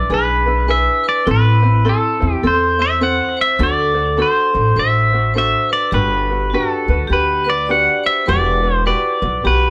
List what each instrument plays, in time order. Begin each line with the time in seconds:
Already playing: ukulele E4 B4, pedal steel guitar D5
0.10 upright bass B1, ukulele D4 E4 G#4 B4, vibraphone G#4
0.14 pedal steel guitar B4
0.46 ukulele D4 E4 B4
0.68 ukulele D4 E4 G#4 B4, vibraphone B4, pedal steel guitar E5
1.04 vibraphone B4
1.09 pedal steel guitar D5
1.26 upright bass A1, ukulele C4 E4 A4 C5, vibraphone E4
1.31 pedal steel guitar B4
1.62 ukulele C4 E4 C5
1.85 ukulele C4 E4 A4 C5, vibraphone E4
1.89 pedal steel guitar A4
2.20 upright bass E2, ukulele C4 E4 C5
2.34 pedal steel guitar G4
2.43 upright bass E2, ukulele C4 E4 A4 C5, vibraphone A4
2.47 pedal steel guitar C5
2.78 ukulele C4 E4 C5, vibraphone C5, pedal steel guitar E5
3.01 ukulele C4 E4 A4 C5, vibraphone C5, pedal steel guitar F#5
3.37 vibraphone C5
3.41 pedal steel guitar E5
3.59 upright bass D2, ukulele D4 F#4 A4 C5, vibraphone A4
3.63 pedal steel guitar D5
3.94 ukulele D4 F#4 C5
4.17 ukulele D4 F#4 A4 C5, vibraphone A4
4.22 pedal steel guitar C5
4.54 upright bass A1, ukulele D4 F#4 C5
4.76 upright bass A1, ukulele D4 F#4 A4 C5, vibraphone C5, pedal steel guitar E5
5.13 ukulele D4 F#4 C5
5.34 ukulele D4 F#4 A4 C5, vibraphone C5
5.38 pedal steel guitar E5
5.69 vibraphone B4, pedal steel guitar D5
5.91 upright bass G1, ukulele D4 F#4 G4 B4, vibraphone G4, pedal steel guitar B4
6.30 ukulele D4 F#4 B4
6.50 ukulele D4 G4, vibraphone F#4
6.54 ukulele F#4 B4, pedal steel guitar A4
6.88 upright bass D2, ukulele D4 F#4 B4
7.07 upright bass D2, vibraphone G4, ukulele G4
7.12 ukulele D4 F#4 B4, pedal steel guitar B4
7.44 ukulele D4 F#4 B4, vibraphone B4
7.50 pedal steel guitar D5
7.67 ukulele D4 F#4 G4 B4, vibraphone D5
7.71 pedal steel guitar F#5
8.04 vibraphone C5, pedal steel guitar E5
8.26 upright bass E1, ukulele E4 F#4 G4 B4, vibraphone B4, pedal steel guitar D5
8.63 ukulele E4 F#4 B4
8.75 pedal steel guitar C5
8.86 ukulele E4 F#4 G4 B4, vibraphone B4, pedal steel guitar D5
9.22 upright bass B1, ukulele E4 F#4 B4
9.44 upright bass B1, ukulele E4 F#4 G4 B4, vibraphone G4, pedal steel guitar B4